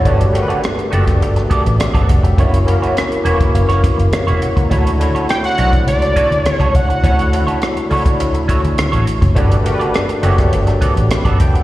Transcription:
Already playing: C#5
0.04 G1 A3 B3 D4 F#4 G4 A4 B4 D5, kick, closed hi-hat
0.21 closed hi-hat
0.33 A3 D4 F#4 G4 A#4, muted clean electric guitar stroke, closed hi-hat
0.42 B4
0.48 B3 F#4 A4 D5, muted fingered electric bass stroke, closed hi-hat
0.63 muted clean electric guitar stroke, cross-stick, closed hi-hat
0.77 muted clean electric guitar stroke, closed hi-hat
0.90 F#1 A3 B3 D4 F#4 G4 A4 D5, closed hi-hat
1.07 muted clean electric guitar stroke, kick, cross-stick, closed hi-hat
1.21 G1, muted clean electric guitar stroke, closed hi-hat
1.36 muted clean electric guitar stroke, cross-stick, closed hi-hat
1.50 B3 F#4 A4 D5, kick, closed hi-hat
1.65 A1, muted clean electric guitar stroke, closed hi-hat
1.79 C#5 E5, muted clean electric guitar stroke, cross-stick, closed hi-hat
1.94 G1 B3 F#4 A4 D5, kick, closed hi-hat
2.09 F1 D5 F#5, muted clean electric guitar stroke, kick, closed hi-hat
2.23 E5 G5, muted clean electric guitar stroke, closed hi-hat
2.36 F#1 A#3 C#4 E4 F#4 C#5, kick, closed hi-hat
2.54 closed hi-hat
2.65 A#3 C#4 E4 F#4 A#4, muted clean electric guitar stroke, closed hi-hat
2.82 A#3 E4 F#4 C#5, muted fingered electric bass stroke, closed hi-hat
2.97 cross-stick, closed hi-hat
3.11 muted clean electric guitar stroke, closed hi-hat
3.24 E1 A#3 C#4 E4 F#4 B4 C#5, closed hi-hat
3.34 C#5
3.40 muted clean electric guitar stroke, kick, closed hi-hat
3.54 F#1, muted clean electric guitar stroke, closed hi-hat
3.69 A#3 E4 F#4 C#5, cross-stick, closed hi-hat
3.84 kick, closed hi-hat
3.98 F#1, muted clean electric guitar stroke, closed hi-hat
4.12 A#4 C#5, muted clean electric guitar stroke, muted fingered electric bass stroke, cross-stick, closed hi-hat
4.27 E1 A#3 E4 F#4 C#5 E5, closed hi-hat
4.42 F#5, closed hi-hat
4.56 C#2 F#5 A#5, muted clean electric guitar stroke, kick, closed hi-hat
4.70 D2 A3 C#4 D4 E4 F#4 A4 C#5, kick, closed hi-hat
4.87 closed hi-hat
4.99 A3 D4 E4 F#4 C#5, muted clean electric guitar stroke, closed hi-hat
5.14 C#4 F#4 A4 C#5, muted fingered electric bass stroke, closed hi-hat
5.29 G5, muted clean electric guitar stroke, cross-stick, closed hi-hat
5.43 F#5, muted clean electric guitar stroke, closed hi-hat
5.58 B1 A3 C#4 D4 E4 F#4 A4 C5 C#5, closed hi-hat
5.67 D5
5.73 muted clean electric guitar stroke, kick, closed hi-hat
5.87 C#2 D5, muted clean electric guitar stroke, closed hi-hat
6.02 muted clean electric guitar stroke, cross-stick, closed hi-hat
6.16 C#4 F#4 A4 C#5, kick, closed hi-hat
6.31 D2, muted clean electric guitar stroke, closed hi-hat
6.44 C#5, muted clean electric guitar stroke, cross-stick, closed hi-hat
6.60 C#2 C#4 F#4 A4 C#5, kick, closed hi-hat
6.74 C#2 F#5, muted clean electric guitar stroke, kick, closed hi-hat
6.89 muted clean electric guitar stroke, closed hi-hat
7.03 D2 A3 C#4 D4 E4 F#4 A4 C#5, kick, closed hi-hat
7.19 closed hi-hat
7.32 A3 D4 E4 F#4 A4, muted clean electric guitar stroke, closed hi-hat
7.47 C#4 F#4 A4 C#5, muted fingered electric bass stroke, closed hi-hat
7.62 muted clean electric guitar stroke, cross-stick, closed hi-hat
7.76 muted clean electric guitar stroke, closed hi-hat
7.89 C#2 A3 C#4 D4 E4 F#4 A4 C#5, open hi-hat
8.05 muted clean electric guitar stroke, kick, closed hi-hat
8.20 D2, muted clean electric guitar stroke, closed hi-hat
8.34 muted clean electric guitar stroke, closed hi-hat
8.48 C#4 F#4 A4 C#5, kick, closed hi-hat
8.63 D2, muted clean electric guitar stroke, closed hi-hat
8.78 muted clean electric guitar stroke, muted fingered electric bass stroke, cross-stick, closed hi-hat
8.92 A1 C#4 F#4 A4 C#5, closed hi-hat
9.07 muted clean electric guitar stroke, closed hi-hat
9.21 F#1, muted clean electric guitar stroke, kick, closed hi-hat
9.35 G1 A3 B3 D4 F#4 G4 A4 B4 D5, kick, closed hi-hat
9.52 closed hi-hat
9.64 A3 D4 F#4 G4 A#4, muted clean electric guitar stroke, closed hi-hat
9.74 B4
9.79 B3 F#4 A4 D5, closed hi-hat
9.94 cross-stick, closed hi-hat
10.09 muted clean electric guitar stroke, closed hi-hat
10.22 F#1 A3 B3 D4 F#4 G4 A4 C#5 D5, closed hi-hat
10.38 muted clean electric guitar stroke, kick, cross-stick, closed hi-hat
10.52 G1, muted clean electric guitar stroke, closed hi-hat
10.67 muted clean electric guitar stroke, cross-stick, closed hi-hat
10.81 B3 F#4 A4 D5, kick, closed hi-hat
10.96 A1, muted clean electric guitar stroke, closed hi-hat
11.11 G5 B5, muted clean electric guitar stroke, cross-stick, closed hi-hat
11.25 G1 B3 F#4 A4 D5 F#5 A5, kick, closed hi-hat
11.40 F1 E5 G5, muted clean electric guitar stroke, kick, closed hi-hat
11.54 D5 F#5, muted clean electric guitar stroke, closed hi-hat

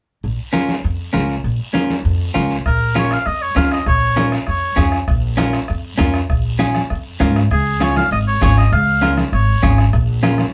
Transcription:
0.23 A#1, long guiro
0.53 C#4 F4 A#4, high conga, short guiro
0.68 high conga, short guiro
0.84 F2, long guiro
1.13 C#2 C#4 F4 A#4, high conga, short guiro
1.29 short guiro
1.44 A#1, long guiro
1.74 C#4 F4 A#4, high conga, short guiro
1.90 high conga, short guiro
2.05 F2, long guiro
2.34 C#2 C#4 F4 A#4, high conga, short guiro
2.50 short guiro
2.66 A#1 A#4, bombo low, bombo rim
2.95 C#4 F4 A#4 C#5, bombo rim, high conga, short guiro
3.11 F5, bombo rim, short guiro
3.26 F2 D#5, bombo rim, long guiro
3.42 C#5
3.56 F2 C#4 F4 A#4 F5, bombo low, bombo rim, high conga, short guiro
3.71 D#5, bombo rim, short guiro
3.86 A#1 C#5, bombo low, bombo rim
4.16 C#4 F4 A#4, bombo rim, high conga, short guiro
4.32 bombo rim, short guiro
4.47 F2 C#5, bombo rim, long guiro
4.76 F2 C#4 F4 G#4, bombo low, bombo rim, high conga, short guiro
4.92 bombo rim, short guiro
5.08 A#1, bombo low, bombo rim, long guiro
5.37 C#4 F4 A#4, bombo rim, high conga, short guiro
5.53 bombo rim, short guiro
5.68 F2, bombo rim, long guiro
5.98 F2 C#4 F4 A#4, bombo low, bombo rim, high conga, short guiro
6.14 bombo rim, short guiro
6.29 A#1, bombo low, bombo rim, long guiro
6.59 C#4 F4 G#4, bombo rim, high conga, short guiro
6.75 bombo rim, high conga, short guiro
6.90 F2, bombo rim, long guiro
7.20 G#2 C#4 F4 A#4, bombo low, bombo rim, high conga, short guiro
7.36 bombo rim, short guiro
7.51 C#2 G#4, bombo low, bombo rim, long guiro
7.80 C#4 F4 G#4 C#5, bombo rim, high conga, short guiro
7.96 F5, bombo rim, high conga, short guiro
8.11 G#1 D#5, bombo rim, long guiro
8.28 C#5
8.42 G#1 C#4 F4 G#4 C#5, bombo low, bombo rim, high conga, short guiro
8.57 D#5, bombo rim, short guiro
8.72 C#2 F5, bombo low, bombo rim, long guiro
9.02 C#4 F4 A#4, bombo rim, high conga, short guiro
9.17 bombo rim, high conga, short guiro
9.32 G#1 C#5, bombo rim, long guiro
9.62 G#1 C#4 F4 G#4, bombo low, bombo rim, high conga, short guiro
9.78 bombo rim, short guiro
9.93 A#1, bombo low, bombo rim, long guiro
10.23 C#4 F4 A#4, bombo rim, high conga, short guiro
10.38 bombo rim, high conga, short guiro

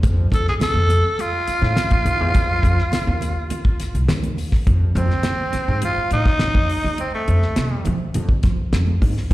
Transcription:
0.03 F2, kick, closed hi-hat, tambourine, muted conga
0.30 F2 A4, kick, closed hi-hat, tambourine, muted conga
0.47 G#4, snare
0.59 A4, muted upright bass stroke, snare, closed hi-hat, tambourine, high conga
0.74 F2
0.89 closed hi-hat, tambourine, muted conga, low conga
1.19 F4, closed hi-hat, tambourine, muted conga
1.47 muted upright bass stroke, closed hi-hat, tambourine
1.62 A2, snare
1.76 snare, closed hi-hat, tambourine, high conga
1.91 A2, kick, closed hi-hat, high conga
2.05 D#2, closed hi-hat, tambourine
2.20 E2
2.34 F2, kick, closed hi-hat, tambourine, muted conga
2.62 F2, kick, closed hi-hat, tambourine, muted conga
2.78 snare
2.92 muted upright bass stroke, snare, closed hi-hat, tambourine, high conga
3.07 D#2
3.21 closed hi-hat, tambourine, muted conga, low conga
3.50 closed hi-hat, tambourine, muted conga, low conga
3.65 kick
3.80 muted upright bass stroke, snare, closed hi-hat, tambourine
3.95 C2, closed hi-hat
4.08 D#2, snare, closed hi-hat, tambourine, high conga
4.22 closed hi-hat, high conga
4.37 open hi-hat, tambourine, high conga
4.52 kick, snare
4.67 F2, kick, closed hi-hat, muted conga
4.95 F2 C4, closed hi-hat
5.10 snare
5.23 snare, closed hi-hat, high conga
5.53 muted upright bass stroke, snare, closed hi-hat, muted conga, low conga
5.68 G#2
5.82 F4, closed hi-hat, muted conga, low conga
5.97 muted upright bass stroke
6.11 A2 D#4, closed hi-hat
6.26 kick, snare
6.39 muted upright bass stroke, snare, closed hi-hat, high conga
6.54 F2, kick, high conga
6.69 open hi-hat, high conga
6.84 E2
6.98 C4, closed hi-hat, muted conga
7.14 A3
7.26 F2, closed hi-hat, muted conga
7.42 snare
7.56 C3, snare, closed hi-hat, high conga
7.85 F3, closed hi-hat, muted conga, low conga
8.14 F2, closed hi-hat, muted conga
8.29 kick
8.43 F3, kick, snare, closed hi-hat
8.72 F2, snare, closed hi-hat, high conga
8.87 high conga
9.02 G#2, kick, open hi-hat, high conga
9.17 snare

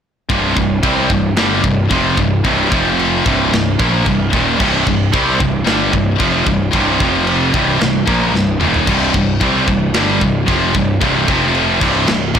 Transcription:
0.29 C1 C2 G2 C3, kick, china
0.56 C1 C2 G2, kick
0.83 C2 C3 G3 C4, kick, china
1.10 C1 C2 G2, kick
1.35 G1 G2 D3 G3, snare, china
1.64 C1 C2 G2, kick
1.91 F1 F2 C3 F3, kick, china
2.17 C1 C2 G2, kick
2.44 C1 C2 G2 C3, kick, china
2.72 F1 F2 C3 F3, kick
2.99 china
3.25 C1 C2 G2 C3, kick
3.52 C1 C2 G2, snare, china
3.79 A#1 A#2 F3 A#3, kick
4.06 C1 C2 G2, kick, china
4.32 D#1 D#2 A#2 D#3, kick
4.59 C1 C2 G2 C3, kick, china, crash
4.87 C1 C2 G2, kick
5.13 C2 C3 G3 C4, kick, china
5.38 C1 C2 G2, kick
5.65 G1 G2 D3 G3, snare, china
5.92 C1 C2 G2, kick
6.18 F1 F2 C3 F3, kick, china
6.45 C1 C2 G2, kick
6.71 C1 C2 G2 C3, kick, china
6.75 C2
6.99 F1 F2 C3 F3, kick
7.27 china
7.52 C1 C2 G2 C3, kick
7.78 C1 C2 G2, snare, china
8.06 A#1 A#2 F3 A#3, kick
8.31 C1 C2 G2, snare
8.36 C2
8.60 D#1 D#2 A#2 D#3, mid tom
8.74 floor tom
8.86 C1 C2 G2 C3, kick, crash, china
9.14 C1 C2 G2, kick
9.40 C2 C3 G3 C4, kick, china
9.67 C1 C2 G2, kick
9.94 G1 G2 D3 G3, snare, china
10.21 C1 C2 G2, kick
10.47 F1 F2 C3 F3, kick, china
10.74 C1 C2 G2, kick
11.01 C1 C2 G2 C3, kick, china
11.28 F1 F2 C3 F3, kick
11.55 china
11.81 C1 C2 G2 C3, kick, crash
12.07 C1 C2 G2, snare, china
12.35 A#1 A#2 F3 A#3, kick

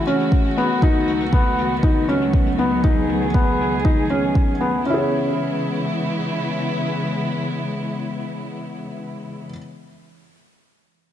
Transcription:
Already playing: C#3 E3 G#3 A3 F#4
0.07 C#4, closed hi-hat
0.20 closed hi-hat
0.32 kick, closed hi-hat
0.44 closed hi-hat
0.58 B3, closed hi-hat
0.82 C#2 D#3 F#3 B3 D#4, kick
1.07 closed hi-hat
1.20 closed hi-hat
1.33 B3, kick, closed hi-hat
1.58 closed hi-hat
1.83 D#4, kick, closed hi-hat
2.09 C#4, closed hi-hat
2.21 closed hi-hat
2.34 kick, closed hi-hat
2.46 closed hi-hat
2.58 B3, closed hi-hat
2.84 D#4 G#4, kick
3.09 closed hi-hat
3.22 closed hi-hat
3.34 B3, kick, closed hi-hat
3.61 closed hi-hat
3.85 D#4, kick, closed hi-hat
4.10 C#4, closed hi-hat
4.23 closed hi-hat
4.35 kick, closed hi-hat
4.48 closed hi-hat
4.61 B3, closed hi-hat
4.86 C#3 E3 G#3 B3 C#4 E4
4.94 G#4
4.98 C#5

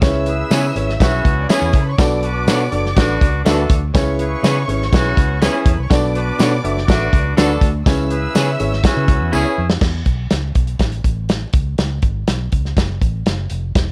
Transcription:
0.01 C#2 C#3 C#4 E4 G#4 B4 C#5 E5 E6, kick, snare, closed hi-hat, tambourine
0.26 E4 G#4 B4, closed hi-hat
0.51 C#3 B3 C#4 E4 G#4 B4 C#5, snare, closed hi-hat, tambourine
0.75 G#1 C#4 E4 G#4 B4 C#5, closed hi-hat
0.89 snare
1.00 B1 B3 C#4 E4 F#4 G#4 B4 E5, kick, snare, closed hi-hat, tambourine
1.25 C#2, kick, closed hi-hat
1.41 D4 D5
1.49 B3 C#4 E4 G#4 B4 C#5 E5, snare, closed hi-hat, tambourine
1.58 E2 F#4 F#5
1.66 G#4 G#5
1.73 C#3 A4 A5, kick, closed hi-hat
1.83 B4 B5
1.90 C#5 C#6
1.98 B1 B2 D4 F#4 A4 B4 D5 D6, kick, snare, closed hi-hat, tambourine
2.23 D4 F#4 B4, closed hi-hat
2.47 B2 A3 D4 F#4 A4 B4 C#5, snare, closed hi-hat, tambourine
2.72 F#1 D4 F#4 A4 B4 D5, closed hi-hat
2.86 snare
2.96 A1 B3 D4 F#4 A4 B4 D5, kick, snare, closed hi-hat, tambourine
3.21 C#2, kick, closed hi-hat
3.45 D2 A3 D4 F#4 A4 B4 E5, snare, closed hi-hat, tambourine
3.70 D2, kick, closed hi-hat
3.94 C#2 C#3 C#4 E4 G#4 B4 C#5 C#6, kick, snare, closed hi-hat, tambourine
4.18 E4 G#4 B4, closed hi-hat
4.42 C#3 B3 C#4 E4 G#4 B4 C#5, snare, closed hi-hat, tambourine
4.68 G#1 C#4 E4 G#4 B4 C#5, closed hi-hat
4.82 snare
4.92 B1 B3 C#4 E4 F#4 G#4 B4 C#5, kick, snare, closed hi-hat, tambourine
5.17 C#2, kick, closed hi-hat
5.41 B3 C#4 E4 G#4 B4 C#5, snare, closed hi-hat, tambourine
5.58 G#4 G#5
5.66 E2 A4 A5, kick, closed hi-hat
5.74 B4 B5
5.79 C2
5.83 C#5 C#6
5.90 B1 B2 D4 F#4 A4 B4 D5 D6, kick, snare, closed hi-hat, tambourine
6.15 D4 F#4 B4, closed hi-hat
6.39 B2 A3 D4 F#4 A4 B4 C#5, snare, closed hi-hat, tambourine
6.63 F#1 D4 F#4 A4 B4 E5, closed hi-hat
6.78 snare
6.87 A1 B3 D4 F#4 A4 B4 E5, kick, snare, closed hi-hat, tambourine
7.13 C#2, kick, closed hi-hat
7.37 D2 A3 D4 F#4 A4 B4 D5, snare, closed hi-hat, tambourine
7.61 D2, kick, closed hi-hat
7.86 C#2 C#3 C#4 E4 G#4 B4 C#5 E5 E6, kick, snare, closed hi-hat, tambourine
8.10 E4 G#4 B4, closed hi-hat
8.35 C#3 B3 C#4 E4 G#4 B4 C#5, snare, closed hi-hat, tambourine
8.59 G#1 C#4 E4 G#4 B4 C#5, closed hi-hat
8.73 snare
8.83 B3 C#4 E4 F#4 G#4 B4 E5, kick, snare, closed hi-hat, tambourine
8.97 C#3
9.08 C#2, kick, closed hi-hat
9.21 E2
9.32 C#2 B3 C#4 E4 G#4 B4 C#5, tambourine
9.58 F2
9.70 snare
9.81 E2, kick, snare, crash
10.06 B1, kick, closed hi-hat
10.30 C#2, snare, closed hi-hat
10.55 B1, kick, closed hi-hat
10.67 closed hi-hat
10.79 A1, kick, snare, closed hi-hat
10.92 closed hi-hat
11.04 A1, kick, closed hi-hat
11.29 snare, closed hi-hat
11.53 C#2, kick, closed hi-hat
11.78 C#2, snare, closed hi-hat
12.02 G#1, kick, closed hi-hat
12.28 B1, snare, closed hi-hat
12.52 C#2, kick, closed hi-hat
12.65 snare
12.77 F#1, kick, snare, closed hi-hat
13.01 A1, kick, closed hi-hat
13.26 F#1, snare, closed hi-hat
13.50 F1, closed hi-hat
13.75 E1, kick, snare, closed hi-hat

